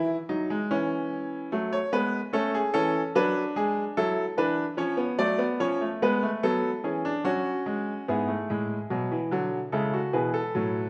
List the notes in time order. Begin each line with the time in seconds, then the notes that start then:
Already playing: E3 E4
0.29 F#3 D#4
0.50 G#3
0.71 E3 C#4
1.52 F#3 A3
1.73 C#5
1.92 G#3 B3 B4
2.33 A3 C#4 A4
2.54 G#4
2.74 E3 C#4 A4
3.15 F#3 D4 B4
3.56 G#3 G#4
3.97 F#3 E4 A4
4.37 E3 D4 B4
4.77 F3 C#4 C#5
4.97 B3
5.19 F#3 A3 D5
5.39 B3
5.60 F3 C#4 C#5
5.81 A3
6.02 G#3 B3 B4
6.23 A3
6.43 F#3 B3 A4
6.84 E3 C#4 G#4
7.05 D4
7.24 F#3 C#4 F#4
7.66 G#3
8.08 G#2 B3 E4 G#4
8.28 A3
8.50 A2 G#3
8.90 B2 F#3
9.12 E3
9.31 D3 F#3
9.72 C#3 G#3 E4 A4
9.94 F#4
10.13 B2 E3 G#4 B4
10.34 A4
10.55 A2 F#3